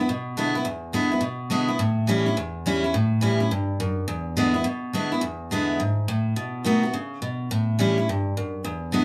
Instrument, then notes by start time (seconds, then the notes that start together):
steel-string acoustic guitar
0.01 B3
0.09 B2
0.37 D3 G#3 B3 E4
0.55 B3 E4
0.65 E2
0.93 D3 G#3 B3 E4
1.12 B3 E4
1.21 B2
1.50 D3 G#3 B3 E4
1.68 B3 E4
1.79 A2
2.07 E3 G3 C#4 E4
2.26 C#4 E4
2.37 E2
2.66 E3 G3 C#4 E4
2.84 C#4 E4
2.94 A2
3.21 E3 G3 C#4 E4
3.40 C#4 E4
3.51 G2
3.80 F#2
4.08 E2
4.37 D3 G#3 B3 E4
4.54 B3 E4
4.64 B2
4.93 D3 G#3 B3 E4
5.12 B3 E4
5.21 E2
5.51 D3 G#3 B3 E4
5.80 G#2
6.08 A2
6.36 B2
6.64 D#3 A3 B3 F#4
6.83 B3 F#4
6.94 C#3
7.22 B2
7.51 A2
7.79 E3 G3 C#4 E4
7.98 C#4 E4
8.09 G2
8.37 F#2
8.64 E2
8.92 D3 G#3 B3 E4